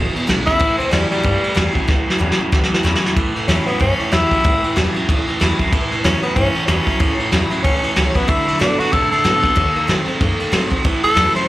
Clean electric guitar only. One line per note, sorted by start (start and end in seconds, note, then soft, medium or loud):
0.00 0.14 E2 medium
0.00 0.14 B2 loud
0.16 0.27 E2 medium
0.16 0.28 B2 medium
0.28 0.45 E2 medium
0.28 0.46 C#3 loud
0.47 0.59 E2 medium
0.47 0.60 C#3 loud
0.61 0.77 A2 medium
0.61 0.78 E3 medium
0.80 0.91 A2 medium
0.80 0.92 E3 medium
0.92 1.09 A2 medium
0.92 1.10 F#3 loud
1.11 1.23 A2 medium
1.11 1.24 F#3 medium
1.24 1.41 A2 medium
1.24 1.41 E3 loud
1.42 1.55 A2 medium
1.42 1.55 E3 medium
1.56 1.73 A2 medium
1.56 1.73 F#3 medium
1.75 1.87 A2 medium
1.75 1.87 F#3 medium
1.89 2.05 A2 medium
1.89 2.06 E3 loud
2.07 2.19 A2 medium
2.07 2.19 E3 medium
2.21 2.38 A2 medium
2.21 2.38 F#3 medium
2.39 2.51 A2 medium
2.39 2.51 F#3 medium
2.52 2.69 A2 medium
2.52 2.70 E3 medium
2.71 2.83 A2 medium
2.71 2.83 E3 medium
2.85 3.01 A2 medium
2.85 3.02 F#3 medium
3.03 3.15 A2 medium
3.03 3.15 F#3 medium
3.17 3.33 A2 medium
3.17 3.33 E3 loud
3.34 3.47 A2 medium
3.34 3.47 E3 medium
3.48 3.65 A2 medium
3.48 3.65 F#3 medium
3.66 3.78 A2 medium
3.66 3.79 F#3 medium
3.80 3.97 A2 medium
3.80 3.97 E3 medium
3.99 4.10 A2 medium
3.99 4.11 E3 medium
4.11 4.29 A2 medium
4.11 4.29 F#3 loud
4.30 4.42 A2 medium
4.30 4.43 F#3 medium
4.44 4.61 A2 medium
4.44 4.61 E3 medium
4.63 4.75 A2 medium
4.63 4.75 E3 medium
4.76 4.93 A2 medium
4.76 4.93 F#3 medium
4.95 5.07 A2 medium
4.95 5.07 F#3 medium
5.08 5.25 A2 medium
5.08 5.25 E3 medium
5.26 5.39 A2 medium
5.26 5.39 E3 medium
5.41 5.57 A2 medium
5.41 5.57 F#3 medium
5.59 5.71 A2 medium
5.59 5.71 F#3 loud
5.72 5.89 A2 medium
5.72 5.89 E3 loud
5.91 6.03 A2 medium
5.91 6.03 E3 medium
6.05 6.21 A2 medium
6.05 6.22 F#3 loud
6.24 6.35 A2 medium
6.24 6.36 F#3 medium
6.37 6.53 A2 medium
6.37 6.53 E3 medium
6.55 6.67 A2 medium
6.55 6.67 E3 medium
6.68 6.85 A2 medium
6.68 6.85 F#3 medium
6.87 6.99 A2 medium
6.87 6.99 F#3 medium
7.00 7.17 A2 medium
7.00 7.17 E3 loud
7.19 7.31 A2 medium
7.19 7.31 E3 medium
7.32 7.49 A2 medium
7.32 7.49 F#3 medium
7.50 7.63 A2 medium
7.50 7.63 F#3 medium
7.64 7.81 A2 medium
7.64 7.81 E3 medium
7.83 7.95 A2 medium
7.83 7.95 E3 medium
7.96 8.13 A2 medium
7.96 8.13 F#3 loud
8.15 8.27 A2 medium
8.15 8.27 F#3 medium
8.28 8.45 D3 medium
8.28 8.45 A3 medium
8.47 8.59 D3 medium
8.47 8.59 A3 medium
8.61 8.77 D3 medium
8.61 8.78 B3 medium
8.79 8.91 D3 medium
8.79 8.92 B3 medium
8.93 9.09 D3 medium
8.93 9.10 A3 medium
9.11 9.23 D3 medium
9.11 9.23 A3 medium
9.25 9.41 D3 medium
9.25 9.42 B3 loud
9.43 9.55 D3 medium
9.43 9.56 B3 medium
9.57 9.74 D#3 medium
9.57 9.74 A#3 loud
9.76 9.88 D#3 medium
9.76 9.88 A#3 medium
9.89 10.05 D#3 medium
9.89 10.06 C4 medium
10.07 10.19 D#3 medium
10.07 10.19 C4 medium
10.20 10.37 D#3 medium
10.20 10.38 A#3 medium
10.39 10.51 D#3 medium
10.39 10.52 A#3 medium
10.52 10.69 D#3 medium
10.52 10.69 C4 loud
10.71 10.83 D#3 medium
10.71 10.84 C4 medium
10.85 11.02 A2 medium
10.85 11.02 E3 loud
11.03 11.15 A2 medium
11.03 11.15 E3 medium
11.16 11.33 A2 medium
11.16 11.33 F#3 medium
11.35 11.47 A2 medium
11.35 11.47 F#3 medium